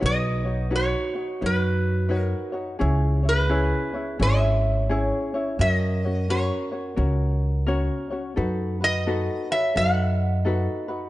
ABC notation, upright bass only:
X:1
M:4/4
L:1/8
Q:"Swing" 1/4=86
K:B
V:1 name="Upright bass" clef=bass
B,,,4 F,,4 | C,,4 G,,,4 | F,,4 C,,4 | F,,4 F,,4 |]